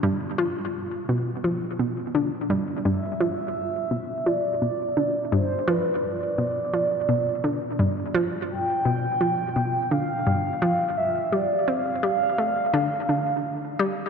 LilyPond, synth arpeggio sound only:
\new Staff \with { instrumentName = "Synth arpeggio sound" } { \clef bass \time 4/4 \key g \mixolydian \tempo 4 = 85 g,8 f8 r8 b,8 f8 b,16 r16 d16 r16 g,8 | g,8 f8 r8 b,8 f8 b,16 r16 d16 r16 g,8 | f8 r8 b,8 f8 b,16 r16 d16 r16 g,8 f8 | r8 b,8 f8 b,16 r16 d16 r16 g,8 f8 r8 |
g8 c'8 g16 r16 a16 r16 d8 d8 r8 g16 r16 | }